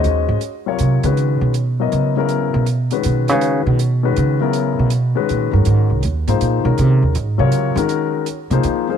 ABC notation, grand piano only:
X:1
M:3/4
L:1/8
Q:"Swing" 1/4=160
K:Db
V:1 name="Grand piano"
[A,DGce]2 z [C,G,FBd]2 [E,A,DG_c]- | [E,A,DG_c]2 z [^F,=B,=E_B^d]2 [_D,F,=B,E_B]- | [D,^F,=B,=E_B]2 z [^D,^G,_D^F=B]2 [^D,G,_DFB]- | [^D,^G,_D^F=B]2 z [^D,G,_DFB]2 [_D,^F,=B,=E_B]- |
[D,^F,=B,=E_B]2 z [^D,^G,_D^F=B]2 [^D,G,_DF_B]- | [^D,^G,_D^FB]2 z [=F,B,EAc]2 [E,A,D_GB]- | [E,A,DGB]2 z [C,G,FBd]2 [E,A,DGB]- | [E,A,DGB]2 z [F,B,EAc]2 [F,B,EAc] |]